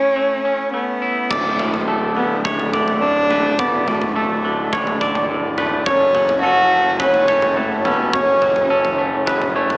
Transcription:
0.00 0.45 A2 soft
0.00 0.15 A3 soft
0.00 0.44 C#4 soft
0.00 0.73 C#4 medium
0.00 1.01 E4 soft
0.16 0.72 A3 soft
0.45 1.31 C#4 soft
0.73 1.31 A3 soft
0.73 1.33 B3 medium
1.02 1.31 E4 soft
1.30 3.55 D1 medium
1.30 2.73 D2 medium
1.30 1.88 A3 medium
1.30 5.83 F#4 medium
1.30 9.77 A4 medium
1.30 2.44 D5 medium
1.30 3.57 D5 medium
1.30 9.77 A5 medium
1.30 kick medium
1.30 floor tom medium
1.30 crash medium
1.59 2.44 A2 medium
1.59 floor tom medium
1.74 floor tom medium
1.87 3.30 A3 soft
1.87 3.33 A4 medium
2.16 2.72 D3 soft
2.16 2.43 B3 medium
2.45 3.01 A2 medium
2.45 3.03 A3 medium
2.45 2.73 C#5 medium
2.45 kick medium
2.45 floor tom medium
2.59 floor tom medium
2.73 4.16 D3 medium
2.73 3.30 D5 medium
2.73 kick soft
2.73 mid tom medium
2.88 floor tom medium
3.01 3.86 A2 soft
3.01 3.60 D4 medium
3.30 4.15 A3 soft
3.30 3.59 B4 medium
3.30 floor tom medium
3.30 mid tom medium
3.58 5.83 D1 medium
3.58 5.01 D2 medium
3.58 3.89 B3 medium
3.58 4.16 D5 medium
3.58 5.85 D5 medium
3.58 kick medium
3.58 floor tom medium
3.87 4.71 A2 medium
3.87 4.15 A3 medium
3.87 floor tom medium
4.01 floor tom medium
4.16 4.69 A3 medium
4.16 5.58 A3 medium
4.16 5.61 A4 medium
4.44 5.00 D3 soft
4.73 5.29 A2 medium
4.73 5.01 C#5 medium
4.73 kick medium
4.73 floor tom medium
4.87 floor tom medium
5.01 5.87 D3 soft
5.01 5.57 D5 medium
5.01 kick medium
5.01 mid tom medium
5.15 floor tom medium
5.30 5.87 A2 soft
5.58 6.71 A3 medium
5.58 5.86 B4 medium
5.58 floor tom medium
5.58 mid tom medium
5.86 8.10 F#1 medium
5.86 7.29 F#2 medium
5.86 6.40 C#4 medium
5.86 9.77 F#4 medium
5.86 6.99 C#5 medium
5.86 9.77 C#5 medium
5.86 kick medium
5.86 floor tom medium
6.14 6.98 F#3 soft
6.14 floor tom medium
6.29 floor tom medium
6.43 7.85 C#4 medium
6.43 6.96 F#4 medium
6.43 7.03 A4 medium
6.71 7.27 A3 medium
7.00 7.55 F#3 medium
7.00 7.58 C#4 medium
7.00 7.28 B4 medium
7.00 kick medium
7.00 floor tom medium
7.14 floor tom medium
7.28 8.71 A3 medium
7.28 8.13 C#5 medium
7.28 kick medium
7.28 mid tom medium
7.42 floor tom medium
7.57 8.40 F#3 medium
7.57 7.88 A3 medium
7.85 8.16 B3 medium
7.85 8.70 C#4 medium
7.85 8.14 A4 medium
7.85 floor tom medium
7.85 mid tom medium
8.13 9.77 F#1 medium
8.13 9.55 F#2 medium
8.13 8.99 C#4 medium
8.13 9.27 C#5 medium
8.13 kick medium
8.13 floor tom medium
8.42 9.25 F#3 medium
8.42 floor tom medium
8.56 floor tom medium
8.70 9.77 C#4 medium
8.70 9.27 A4 medium
8.85 floor tom medium
8.98 9.54 A3 soft
9.26 9.77 F#3 medium
9.26 9.55 B4 medium
9.26 kick medium
9.26 floor tom medium
9.42 floor tom medium
9.55 9.77 A3 medium
9.55 9.77 C#5 medium
9.70 floor tom medium

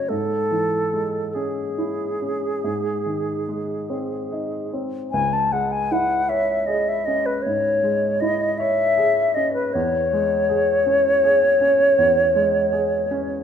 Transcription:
0.00 0.13 C#3 soft
0.00 0.13 A3 soft
0.00 0.13 C#4 soft
0.00 0.12 F#4 soft
0.00 0.10 C#5 soft
0.09 2.58 G#2 soft
0.09 1.36 A4 medium
0.51 1.18 E3 soft
0.93 1.61 G#3 soft
1.34 2.03 C#4 soft
1.34 4.72 G#4 soft
1.78 2.46 E4 soft
2.22 2.64 C#4 soft
2.64 5.10 G#2 soft
3.06 3.73 D#3 soft
3.48 4.15 G#3 soft
3.90 4.56 C4 soft
4.32 4.98 D#4 soft
4.73 5.13 C4 soft
5.12 7.41 C#2 soft
5.12 5.35 G#5 medium
5.33 5.54 A5 medium
5.52 6.14 G#3 soft
5.52 5.73 F#5 medium
5.72 5.93 G#5 medium
5.92 6.53 E4 soft
5.92 6.31 F#5 medium
6.29 6.91 C#5 soft
6.29 6.68 E5 medium
6.66 7.29 G#4 soft
6.66 6.90 D#5 medium
6.89 7.07 E5 medium
7.05 7.68 C#4 soft
7.05 7.27 D#5 medium
7.26 7.44 B4 medium
7.42 8.06 G#2 soft
7.42 8.22 C#5 medium
7.83 8.44 G#3 soft
8.20 8.83 E4 soft
8.20 8.59 D#5 medium
8.58 9.21 C#5 soft
8.58 9.36 E5 medium
8.97 9.59 G#4 soft
9.35 9.75 C#4 soft
9.35 9.53 D#5 medium
9.54 9.75 B4 medium
9.73 11.94 E2 soft
9.73 13.43 C#5 medium
10.13 10.72 G#3 soft
10.50 11.08 G#4 soft
10.86 11.45 C#4 soft
11.24 11.83 G#4 soft
11.61 12.20 C#4 soft
11.98 13.43 E2 soft
12.35 12.94 G#3 soft
12.73 13.32 G#4 soft
13.11 13.43 C#4 soft

